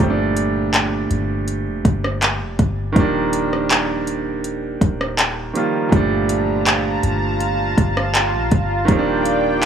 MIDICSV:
0, 0, Header, 1, 5, 480
1, 0, Start_track
1, 0, Time_signature, 4, 2, 24, 8
1, 0, Key_signature, -2, "minor"
1, 0, Tempo, 740741
1, 6254, End_track
2, 0, Start_track
2, 0, Title_t, "Analog synth pad"
2, 0, Program_c, 0, 89
2, 3838, Note_on_c, 0, 65, 89
2, 3839, Note_on_c, 0, 81, 99
2, 3839, Note_on_c, 0, 82, 79
2, 5739, Note_off_c, 0, 81, 0
2, 5739, Note_off_c, 0, 82, 0
2, 5758, Note_on_c, 0, 74, 83
2, 5758, Note_on_c, 0, 79, 102
2, 6254, Note_off_c, 0, 65, 0
2, 6254, Note_off_c, 0, 74, 0
2, 6254, Note_off_c, 0, 79, 0
2, 6254, End_track
3, 0, Start_track
3, 0, Title_t, "Grand piano"
3, 0, Program_c, 1, 0
3, 0, Control_c, 1, 64, 127
3, 0, Note_on_c, 1, 46, 74
3, 0, Note_on_c, 1, 53, 73
3, 0, Note_on_c, 1, 55, 69
3, 7, Control_c, 1, 64, 0
3, 10, Note_on_c, 1, 57, 68
3, 22, Note_on_c, 1, 60, 70
3, 52, Note_off_c, 1, 60, 0
3, 64, Note_on_c, 1, 62, 78
3, 123, Control_c, 1, 64, 127
3, 1880, Note_off_c, 1, 46, 0
3, 1886, Note_off_c, 1, 53, 0
3, 1892, Note_off_c, 1, 55, 0
3, 1895, Note_on_c, 1, 51, 79
3, 1898, Note_off_c, 1, 57, 0
3, 1907, Note_on_c, 1, 53, 69
3, 1919, Note_on_c, 1, 55, 66
3, 1924, Control_c, 1, 64, 0
3, 1925, Note_off_c, 1, 62, 0
3, 1931, Note_on_c, 1, 58, 64
3, 1943, Note_on_c, 1, 62, 81
3, 2047, Control_c, 1, 64, 127
3, 3561, Note_off_c, 1, 51, 0
3, 3566, Note_off_c, 1, 53, 0
3, 3572, Note_off_c, 1, 55, 0
3, 3578, Note_off_c, 1, 58, 0
3, 3584, Note_off_c, 1, 62, 0
3, 3586, Note_on_c, 1, 51, 54
3, 3593, Note_on_c, 1, 53, 51
3, 3599, Note_on_c, 1, 55, 52
3, 3604, Note_on_c, 1, 58, 51
3, 3611, Note_on_c, 1, 65, 62
3, 3816, Note_on_c, 1, 46, 74
3, 3818, Note_off_c, 1, 53, 0
3, 3828, Note_on_c, 1, 53, 65
3, 3830, Note_off_c, 1, 55, 0
3, 3832, Note_off_c, 1, 51, 0
3, 3840, Note_on_c, 1, 55, 69
3, 3841, Note_off_c, 1, 58, 0
3, 3844, Note_off_c, 1, 65, 0
3, 3846, Control_c, 1, 64, 0
3, 3851, Note_on_c, 1, 57, 65
3, 3864, Note_on_c, 1, 62, 82
3, 3960, Control_c, 1, 64, 127
3, 5721, Note_off_c, 1, 46, 0
3, 5727, Note_off_c, 1, 53, 0
3, 5733, Note_off_c, 1, 55, 0
3, 5735, Note_on_c, 1, 51, 75
3, 5738, Note_off_c, 1, 57, 0
3, 5745, Note_off_c, 1, 62, 0
3, 5746, Note_on_c, 1, 53, 68
3, 5759, Note_on_c, 1, 55, 66
3, 5766, Control_c, 1, 64, 0
3, 5770, Note_on_c, 1, 58, 70
3, 5782, Note_on_c, 1, 60, 65
3, 5812, Note_off_c, 1, 60, 0
3, 5824, Note_on_c, 1, 62, 84
3, 5877, Control_c, 1, 64, 127
3, 6254, Note_off_c, 1, 51, 0
3, 6254, Note_off_c, 1, 53, 0
3, 6254, Note_off_c, 1, 55, 0
3, 6254, Note_off_c, 1, 58, 0
3, 6254, Note_off_c, 1, 62, 0
3, 6254, End_track
4, 0, Start_track
4, 0, Title_t, "808-style bass"
4, 0, Program_c, 2, 38
4, 0, Note_on_c, 2, 31, 112
4, 691, Note_off_c, 2, 31, 0
4, 716, Note_on_c, 2, 31, 99
4, 1077, Note_on_c, 2, 29, 109
4, 1087, Note_off_c, 2, 31, 0
4, 1191, Note_off_c, 2, 29, 0
4, 1198, Note_on_c, 2, 31, 101
4, 1556, Note_on_c, 2, 29, 105
4, 1566, Note_off_c, 2, 31, 0
4, 1671, Note_off_c, 2, 29, 0
4, 1679, Note_on_c, 2, 31, 95
4, 1909, Note_off_c, 2, 31, 0
4, 1917, Note_on_c, 2, 27, 106
4, 3092, Note_off_c, 2, 27, 0
4, 3119, Note_on_c, 2, 27, 101
4, 3579, Note_off_c, 2, 27, 0
4, 3838, Note_on_c, 2, 31, 105
4, 4532, Note_off_c, 2, 31, 0
4, 4558, Note_on_c, 2, 31, 102
4, 5019, Note_off_c, 2, 31, 0
4, 5039, Note_on_c, 2, 31, 109
4, 5397, Note_on_c, 2, 34, 105
4, 5407, Note_off_c, 2, 31, 0
4, 5511, Note_off_c, 2, 34, 0
4, 5519, Note_on_c, 2, 31, 97
4, 5749, Note_off_c, 2, 31, 0
4, 5757, Note_on_c, 2, 27, 114
4, 6254, Note_off_c, 2, 27, 0
4, 6254, End_track
5, 0, Start_track
5, 0, Title_t, "Drums"
5, 0, Note_on_c, 9, 36, 112
5, 0, Note_on_c, 9, 42, 66
5, 62, Note_off_c, 9, 36, 0
5, 62, Note_off_c, 9, 42, 0
5, 237, Note_on_c, 9, 42, 81
5, 302, Note_off_c, 9, 42, 0
5, 478, Note_on_c, 9, 42, 76
5, 481, Note_on_c, 9, 39, 113
5, 543, Note_off_c, 9, 42, 0
5, 546, Note_off_c, 9, 39, 0
5, 717, Note_on_c, 9, 42, 65
5, 782, Note_off_c, 9, 42, 0
5, 957, Note_on_c, 9, 42, 68
5, 1022, Note_off_c, 9, 42, 0
5, 1198, Note_on_c, 9, 36, 98
5, 1199, Note_on_c, 9, 42, 65
5, 1263, Note_off_c, 9, 36, 0
5, 1264, Note_off_c, 9, 42, 0
5, 1325, Note_on_c, 9, 37, 90
5, 1389, Note_off_c, 9, 37, 0
5, 1440, Note_on_c, 9, 42, 92
5, 1442, Note_on_c, 9, 39, 117
5, 1505, Note_off_c, 9, 42, 0
5, 1507, Note_off_c, 9, 39, 0
5, 1678, Note_on_c, 9, 42, 58
5, 1679, Note_on_c, 9, 36, 93
5, 1743, Note_off_c, 9, 42, 0
5, 1744, Note_off_c, 9, 36, 0
5, 1918, Note_on_c, 9, 36, 115
5, 1918, Note_on_c, 9, 42, 65
5, 1982, Note_off_c, 9, 36, 0
5, 1983, Note_off_c, 9, 42, 0
5, 2158, Note_on_c, 9, 42, 85
5, 2223, Note_off_c, 9, 42, 0
5, 2287, Note_on_c, 9, 37, 72
5, 2352, Note_off_c, 9, 37, 0
5, 2401, Note_on_c, 9, 42, 76
5, 2404, Note_on_c, 9, 39, 115
5, 2465, Note_off_c, 9, 42, 0
5, 2468, Note_off_c, 9, 39, 0
5, 2639, Note_on_c, 9, 42, 63
5, 2704, Note_off_c, 9, 42, 0
5, 2879, Note_on_c, 9, 42, 66
5, 2943, Note_off_c, 9, 42, 0
5, 3119, Note_on_c, 9, 36, 100
5, 3120, Note_on_c, 9, 42, 64
5, 3184, Note_off_c, 9, 36, 0
5, 3185, Note_off_c, 9, 42, 0
5, 3246, Note_on_c, 9, 37, 95
5, 3310, Note_off_c, 9, 37, 0
5, 3360, Note_on_c, 9, 42, 88
5, 3362, Note_on_c, 9, 39, 112
5, 3425, Note_off_c, 9, 42, 0
5, 3427, Note_off_c, 9, 39, 0
5, 3599, Note_on_c, 9, 42, 62
5, 3664, Note_off_c, 9, 42, 0
5, 3838, Note_on_c, 9, 36, 119
5, 3839, Note_on_c, 9, 42, 63
5, 3903, Note_off_c, 9, 36, 0
5, 3904, Note_off_c, 9, 42, 0
5, 4077, Note_on_c, 9, 42, 85
5, 4142, Note_off_c, 9, 42, 0
5, 4319, Note_on_c, 9, 42, 76
5, 4322, Note_on_c, 9, 39, 110
5, 4383, Note_off_c, 9, 42, 0
5, 4386, Note_off_c, 9, 39, 0
5, 4558, Note_on_c, 9, 42, 69
5, 4622, Note_off_c, 9, 42, 0
5, 4798, Note_on_c, 9, 42, 65
5, 4863, Note_off_c, 9, 42, 0
5, 5039, Note_on_c, 9, 36, 98
5, 5040, Note_on_c, 9, 42, 65
5, 5104, Note_off_c, 9, 36, 0
5, 5105, Note_off_c, 9, 42, 0
5, 5165, Note_on_c, 9, 37, 101
5, 5230, Note_off_c, 9, 37, 0
5, 5280, Note_on_c, 9, 42, 88
5, 5282, Note_on_c, 9, 39, 118
5, 5345, Note_off_c, 9, 42, 0
5, 5347, Note_off_c, 9, 39, 0
5, 5517, Note_on_c, 9, 42, 61
5, 5519, Note_on_c, 9, 36, 87
5, 5582, Note_off_c, 9, 42, 0
5, 5584, Note_off_c, 9, 36, 0
5, 5757, Note_on_c, 9, 36, 114
5, 5757, Note_on_c, 9, 42, 66
5, 5821, Note_off_c, 9, 42, 0
5, 5822, Note_off_c, 9, 36, 0
5, 5997, Note_on_c, 9, 42, 80
5, 6062, Note_off_c, 9, 42, 0
5, 6254, End_track
0, 0, End_of_file